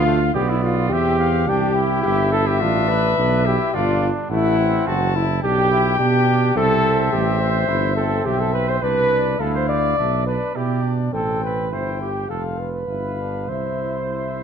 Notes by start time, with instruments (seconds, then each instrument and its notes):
Already playing: tuba D2, flugelhorn F4, french horn F4, cornet F5
0.07 trombone A3
0.34 tuba B1, trombone B3, flugelhorn G4, french horn G4, cornet D5
0.49 flugelhorn E4, french horn E4
0.62 french horn F4, flugelhorn F4
0.89 tuba E2, trombone C4, french horn G4, flugelhorn G4, cornet E5
1.20 cornet F5
1.47 tuba C2, trombone D4, french horn G4, flugelhorn G4, cornet G5
1.75 trombone E4
2.03 tuba G1, french horn G4, flugelhorn G4, cornet E5
2.32 flugelhorn A4, french horn A4
2.47 flugelhorn G4, french horn G4
2.61 tuba A1, trombone D4, flugelhorn F4, french horn F4
2.88 french horn B4, flugelhorn B4
3.18 tuba B1, trombone D4
3.46 trombone E4, flugelhorn G4, french horn G4
3.73 tuba G1, trombone D4, flugelhorn F4, french horn F4, cornet D5
4.30 tuba A1, trombone A3, flugelhorn E4, french horn E4, cornet F#5
4.59 trombone C4
4.87 tuba F#1, flugelhorn F#4, french horn F#4, cornet A5
5.16 flugelhorn E4, french horn E4
5.42 tuba B1, trombone D4, flugelhorn G4, french horn G4, cornet G5
5.71 trombone E4
5.99 tuba B2, trombone D4, french horn G4, flugelhorn G4
6.55 tuba C2, trombone C4, french horn A4, flugelhorn A4, cornet E5
7.12 tuba A1, french horn G4, flugelhorn G4
7.40 french horn C5, flugelhorn C5
7.68 tuba G1, trombone E4
7.96 trombone C4, flugelhorn A4, french horn A4
8.25 tuba B1, flugelhorn G4, french horn G4, cornet E5
8.40 flugelhorn A4, french horn A4
8.53 french horn B4, flugelhorn B4
8.68 flugelhorn C5, french horn C5
8.82 tuba C2, trombone D4, flugelhorn B4, french horn B4, cornet D5
9.39 tuba D2, trombone E4, french horn A4, flugelhorn A4, cornet F5
9.54 flugelhorn C5, french horn C5
9.69 french horn D5, flugelhorn D5
9.97 tuba B1, trombone D4, cornet E5
10.26 trombone D4, french horn B4, flugelhorn B4, cornet D5
10.55 tuba B2, trombone E4, flugelhorn G4, french horn G4, cornet D5
10.84 trombone D4
11.13 tuba A1, trombone C4, flugelhorn A4, french horn A4, cornet G5
11.43 french horn B4, flugelhorn B4
11.72 tuba G1, trombone E4, flugelhorn C5, french horn C5, cornet G5
12.01 flugelhorn G4, french horn G4
12.29 tuba F1, trombone F4, flugelhorn A4, french horn A4, cornet F5
12.59 flugelhorn B4, french horn B4
12.88 tuba G1, trombone E4, cornet F5
13.19 trombone D4
13.48 tuba C2, trombone E4, flugelhorn C5, french horn C5, cornet E5
14.11 cornet E5